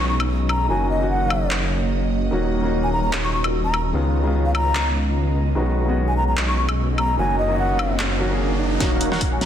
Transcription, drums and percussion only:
0.20 high woodblock medium
0.49 high woodblock medium
1.30 high woodblock medium
1.51 clap medium
3.13 clap medium
3.44 high woodblock medium
3.74 high woodblock medium
4.55 high woodblock medium
4.75 clap medium
6.37 clap medium
6.69 high woodblock medium
6.98 high woodblock medium
7.79 high woodblock medium
7.99 clap loud
8.80 kick medium
8.80 snare soft
8.80 closed hi-hat medium
9.01 closed hi-hat medium
9.12 snare soft
9.21 kick medium
9.21 closed hi-hat medium
9.41 snare soft
9.41 closed hi-hat soft

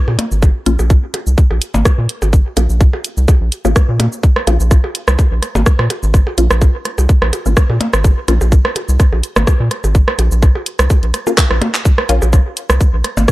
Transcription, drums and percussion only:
0.08 percussion blips soft
0.19 closed hi-hat medium
0.19 percussion blips medium
0.32 shaker soft
0.42 kick loud
0.42 percussion blips soft
0.42 shaker soft
0.66 closed hi-hat medium
0.66 shaker soft
0.79 percussion blips soft
0.79 shaker soft
0.90 kick loud
0.90 shaker medium
1.14 closed hi-hat medium
1.14 percussion blips soft
1.27 shaker soft
1.38 kick loud
1.38 shaker soft
1.51 percussion blips soft
1.62 closed hi-hat medium
1.62 shaker soft
1.74 percussion blips medium
1.74 shaker soft
1.85 kick loud
1.85 cross-stick loud
1.85 percussion blips soft
1.85 shaker soft
2.09 closed hi-hat medium
2.22 percussion blips soft
2.22 shaker soft
2.33 kick loud
2.33 shaker soft
2.57 closed hi-hat medium
2.57 percussion blips soft
2.57 shaker soft
2.70 shaker soft
2.81 kick loud
2.81 shaker medium
2.93 percussion blips soft
3.04 closed hi-hat medium
3.04 shaker soft
3.17 shaker soft
3.28 kick loud
3.28 percussion blips soft
3.28 shaker soft
3.52 closed hi-hat medium
3.52 shaker soft
3.65 percussion blips soft
3.65 shaker soft
3.76 kick loud
3.76 cross-stick loud
3.76 shaker soft
4.00 closed hi-hat medium
4.00 percussion blips soft
4.00 percussion blips medium
4.13 shaker soft
4.23 kick loud
4.23 shaker soft
4.36 cross-stick medium
4.47 closed hi-hat medium
4.47 percussion blips soft
4.47 shaker soft
4.60 shaker soft
4.71 kick loud
4.71 cross-stick soft
4.71 shaker soft
4.84 percussion blips soft
4.95 closed hi-hat medium
5.08 cross-stick medium
5.08 shaker soft
5.19 kick loud
5.19 percussion blips soft
5.19 shaker soft
5.42 cross-stick soft
5.42 closed hi-hat medium
5.42 shaker soft
5.55 percussion blips soft
5.55 percussion blips medium
5.55 shaker soft
5.66 kick loud
5.66 cross-stick loud
5.66 shaker soft
5.79 cross-stick medium
5.90 closed hi-hat medium
5.90 percussion blips soft
6.03 shaker soft
6.14 kick loud
6.14 cross-stick soft
6.14 shaker soft
6.27 percussion blips soft
6.38 closed hi-hat medium
6.38 shaker soft
6.51 cross-stick medium
6.51 shaker soft
6.61 kick loud
6.61 percussion blips soft
6.61 shaker medium
6.85 cross-stick soft
6.85 closed hi-hat medium
6.98 percussion blips soft
6.98 shaker soft
7.09 kick loud
7.09 shaker medium
7.22 cross-stick medium
7.33 closed hi-hat medium
7.33 percussion blips soft
7.33 shaker soft
7.46 shaker soft
7.57 kick loud
7.57 cross-stick soft
7.57 cross-stick loud
7.57 shaker medium
7.70 percussion blips soft
7.81 closed hi-hat medium
7.81 percussion blips medium
7.93 cross-stick medium
7.93 shaker soft
8.04 kick loud
8.04 percussion blips soft
8.04 shaker medium
8.28 cross-stick soft
8.28 closed hi-hat medium
8.28 shaker soft
8.41 percussion blips soft
8.41 shaker soft
8.52 kick loud
8.52 shaker medium
8.65 cross-stick medium
8.76 closed hi-hat medium
8.76 percussion blips soft
8.89 shaker soft
9.00 kick loud
9.00 cross-stick soft
9.00 shaker medium
9.13 percussion blips soft
9.23 closed hi-hat medium
9.23 shaker soft
9.36 cross-stick medium
9.36 percussion blips medium
9.36 shaker soft
9.47 kick loud
9.47 cross-stick loud
9.47 percussion blips soft
9.47 shaker medium
9.71 cross-stick soft
9.71 closed hi-hat medium
9.84 percussion blips soft
9.84 shaker soft
9.95 kick loud
9.95 shaker medium
10.08 cross-stick medium
10.19 closed hi-hat medium
10.19 percussion blips soft
10.19 shaker soft
10.32 shaker soft
10.43 kick loud
10.43 cross-stick soft
10.43 shaker medium
10.55 percussion blips soft
10.66 closed hi-hat medium
10.79 cross-stick medium
10.79 closed hi-hat soft
10.79 shaker soft
10.90 kick loud
10.90 percussion blips soft
10.90 shaker medium
11.03 closed hi-hat soft
11.14 cross-stick soft
11.14 closed hi-hat medium
11.14 shaker soft
11.27 percussion blips soft
11.27 shaker soft
11.38 kick loud
11.38 cross-stick loud
11.38 clap loud
11.38 shaker medium
11.51 cross-stick medium
11.62 closed hi-hat medium
11.62 percussion blips soft
11.62 percussion blips medium
11.74 clap medium
11.74 shaker soft
11.85 kick loud
11.85 shaker medium
11.98 cross-stick medium
12.09 closed hi-hat medium
12.09 shaker soft
12.22 percussion blips medium
12.22 shaker soft
12.33 kick loud
12.33 cross-stick soft
12.33 shaker medium
12.57 closed hi-hat medium
12.57 shaker soft
12.70 cross-stick medium
12.70 shaker soft
12.81 kick loud
12.81 shaker medium
13.04 cross-stick soft
13.04 closed hi-hat medium
13.17 percussion blips medium
13.17 shaker soft
13.28 kick loud
13.28 cross-stick loud
13.28 shaker medium

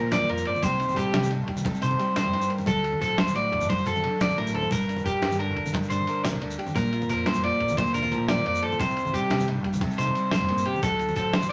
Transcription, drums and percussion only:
0.12 snare medium
0.12 ride medium
0.12 high conga medium
0.12 shekere loud
0.21 low conga medium
0.29 ride medium
0.38 low conga soft
0.38 shekere medium
0.45 ride medium
0.55 low conga medium
0.55 shekere soft
0.62 kick loud
0.62 ride medium
0.62 high conga medium
0.62 low conga soft
0.62 shekere loud
0.80 ride medium
0.80 low conga soft
0.80 shekere soft
0.88 low conga medium
0.88 shekere soft
0.96 kick medium
0.96 ride medium
0.96 shekere loud
1.14 snare medium
1.14 ride medium
1.14 high conga medium
1.23 low conga medium
1.23 shekere medium
1.31 ride medium
1.48 kick medium
1.48 ride medium
1.57 low conga medium
1.57 shekere medium
1.65 kick loud
1.65 ride medium
1.65 high conga loud
1.65 low conga soft
1.75 shekere soft
1.82 ride medium
1.82 low conga soft
1.82 shekere medium
1.91 low conga medium
1.99 ride soft
1.99 shekere soft
2.16 snare medium
2.16 ride medium
2.16 high conga medium
2.16 shekere medium
2.24 low conga medium
2.33 snare soft
2.33 ride medium
2.42 shekere medium
2.50 ride medium
2.58 low conga medium
2.58 shekere soft
2.66 kick medium
2.66 ride medium
2.66 high conga loud
2.66 shekere loud
2.75 low conga soft
2.84 ride medium
2.84 shekere soft
2.92 low conga medium
3.01 kick medium
3.01 ride medium
3.01 shekere medium
3.10 low conga soft
3.18 snare loud
3.18 ride medium
3.18 high conga loud
3.18 low conga soft
3.18 shekere soft
3.27 low conga medium
3.27 shekere medium
3.36 ride medium
3.36 shekere soft
3.52 kick medium
3.52 ride medium
3.61 low conga medium
3.61 shekere medium
3.69 kick loud
3.69 ride medium
3.69 high conga loud
3.69 shekere soft
3.78 low conga soft
3.78 shekere soft
3.86 ride medium
3.86 shekere medium
3.95 low conga medium
3.95 shekere soft
4.04 ride medium
4.21 snare medium
4.21 ride medium
4.21 high conga loud
4.21 shekere loud
4.29 low conga medium
4.29 shekere soft
4.38 snare soft
4.38 ride medium
4.38 low conga soft
4.47 shekere medium
4.55 ride medium
4.62 low conga medium
4.71 kick medium
4.71 ride medium
4.71 high conga medium
4.71 low conga soft
4.71 shekere loud
4.81 shekere soft
4.88 ride medium
4.88 low conga soft
4.88 shekere soft
4.96 low conga medium
4.96 shekere soft
5.05 kick medium
5.05 ride soft
5.05 shekere medium
5.22 snare medium
5.22 ride medium
5.22 high conga medium
5.31 low conga medium
5.31 shekere medium
5.40 ride soft
5.57 kick medium
5.57 ride soft
5.66 low conga medium
5.66 shekere medium
5.73 kick medium
5.73 ride medium
5.73 high conga loud
5.73 low conga soft
5.83 shekere soft
5.90 ride medium
5.90 shekere medium
6.00 low conga medium
6.07 ride medium
6.07 shekere soft
6.25 snare medium
6.25 ride medium
6.25 high conga loud
6.25 shekere loud
6.33 low conga medium
6.42 ride medium
6.50 low conga soft
6.50 shekere medium
6.59 ride medium
6.67 low conga medium
6.67 shekere soft
6.76 kick medium
6.76 ride medium
6.76 high conga loud
6.76 low conga soft
6.76 shekere medium
6.85 shekere soft
6.93 ride medium
6.93 low conga soft
6.93 shekere soft
7.01 low conga medium
7.01 shekere soft
7.09 kick medium
7.09 ride medium
7.09 shekere medium
7.26 snare medium
7.26 ride medium
7.26 high conga loud
7.34 low conga medium
7.34 shekere medium
7.44 ride medium
7.60 kick medium
7.60 ride medium
7.68 low conga medium
7.68 shekere medium
7.77 kick medium
7.77 ride medium
7.77 high conga loud
7.77 low conga soft
7.85 shekere soft
7.94 ride soft
7.94 low conga soft
7.94 shekere medium
8.04 low conga medium
8.12 ride medium
8.12 shekere soft
8.28 snare medium
8.28 ride medium
8.28 high conga loud
8.28 shekere loud
8.38 low conga medium
8.46 ride medium
8.55 low conga soft
8.55 shekere medium
8.63 ride medium
8.72 low conga medium
8.72 shekere soft
8.80 kick medium
8.80 ride medium
8.80 high conga loud
8.80 low conga soft
8.80 shekere medium
8.89 shekere soft
8.97 ride medium
8.97 low conga soft
8.97 shekere soft
9.05 low conga medium
9.05 shekere soft
9.14 kick medium
9.14 ride medium
9.14 shekere medium
9.30 snare medium
9.30 ride medium
9.30 high conga loud
9.39 low conga medium
9.39 shekere medium
9.48 ride medium
9.64 kick medium
9.64 ride medium
9.73 low conga medium
9.73 shekere medium
9.81 kick medium
9.81 ride medium
9.81 high conga loud
9.81 low conga soft
9.91 shekere soft
9.98 ride medium
9.98 low conga soft
9.98 shekere loud
10.07 low conga medium
10.15 ride medium
10.15 shekere soft
10.31 snare medium
10.31 ride medium
10.31 high conga loud
10.31 shekere loud
10.41 low conga medium
10.49 snare soft
10.49 ride medium
10.57 low conga soft
10.57 shekere medium
10.65 ride medium
10.74 low conga medium
10.74 shekere soft
10.83 kick medium
10.83 ride medium
10.83 high conga loud
10.83 low conga soft
10.83 shekere loud
10.91 low conga soft
10.99 ride medium
10.99 shekere soft
11.08 low conga medium
11.08 shekere soft
11.16 kick medium
11.16 ride medium
11.16 shekere loud
11.25 low conga soft
11.33 snare medium
11.33 ride medium
11.33 high conga loud
11.33 shekere soft
11.41 low conga medium
11.41 shekere medium

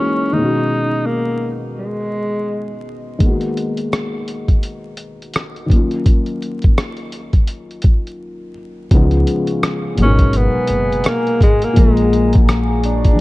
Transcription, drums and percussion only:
3.20 kick medium
3.20 closed hi-hat medium
3.41 closed hi-hat soft
3.57 closed hi-hat medium
3.77 closed hi-hat soft
3.93 cross-stick loud
3.93 closed hi-hat medium
4.28 closed hi-hat medium
4.48 kick medium
4.48 closed hi-hat soft
4.63 closed hi-hat medium
4.97 closed hi-hat medium
5.22 closed hi-hat soft
5.33 cross-stick loud
5.33 closed hi-hat medium
5.56 closed hi-hat soft
5.70 kick medium
5.70 closed hi-hat medium
5.91 closed hi-hat soft
6.06 kick loud
6.06 closed hi-hat medium
6.26 closed hi-hat soft
6.42 closed hi-hat medium
6.62 kick medium
6.62 closed hi-hat soft
6.78 cross-stick loud
6.78 closed hi-hat medium
6.97 closed hi-hat soft
7.12 closed hi-hat medium
7.33 kick medium
7.33 closed hi-hat soft
7.47 closed hi-hat medium
7.71 closed hi-hat soft
7.82 kick loud
7.82 closed hi-hat medium
8.07 closed hi-hat soft
8.91 kick loud
8.91 closed hi-hat medium
9.11 closed hi-hat soft
9.27 closed hi-hat medium
9.47 closed hi-hat soft
9.63 cross-stick loud
9.63 closed hi-hat medium
9.98 closed hi-hat medium
10.19 kick medium
10.19 closed hi-hat soft
10.33 closed hi-hat medium
10.67 closed hi-hat medium
10.92 closed hi-hat soft
11.04 cross-stick loud
11.04 closed hi-hat medium
11.27 closed hi-hat soft
11.41 kick loud
11.41 closed hi-hat medium
11.62 closed hi-hat soft
11.76 kick loud
11.76 closed hi-hat medium
11.97 closed hi-hat soft
12.13 closed hi-hat medium
12.33 kick medium
12.33 closed hi-hat medium
12.49 cross-stick loud
12.49 closed hi-hat medium
12.84 closed hi-hat medium
13.04 kick medium
13.04 closed hi-hat soft

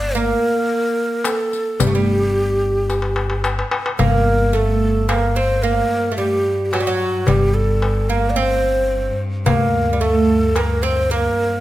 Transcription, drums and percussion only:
0.15 riq soft
0.15 darbuka ka soft
1.24 riq soft
1.24 darbuka tek medium
1.53 riq soft
1.80 riq medium
1.80 darbuka dum medium
2.90 riq soft
2.90 darbuka tek medium
3.02 darbuka ka medium
3.16 darbuka tek medium
3.30 darbuka ka medium
3.44 riq soft
3.44 darbuka tek medium
3.59 darbuka ka medium
3.71 darbuka tek medium
3.86 darbuka ka medium
3.99 darbuka dum medium
5.09 darbuka tek medium
5.64 darbuka ka soft
6.73 darbuka tek medium
7.00 darbuka ka soft
7.27 darbuka dum medium
7.82 darbuka tek medium
9.46 darbuka dum medium
10.56 darbuka tek medium
11.11 darbuka ka soft

